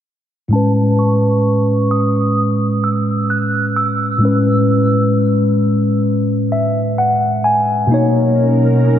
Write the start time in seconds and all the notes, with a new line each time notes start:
0.48 A2 G#3
0.53 C#4 B4 A5
0.99 C#6
1.91 D#6
2.84 E6
3.30 F#6
3.76 E6
4.18 A2 G#3
4.22 C#4 B4
6.52 E5
6.98 F#5
7.44 G#5
7.87 B2 F#3 A#3 C#4 D#4 A#4
7.91 D#4 C#5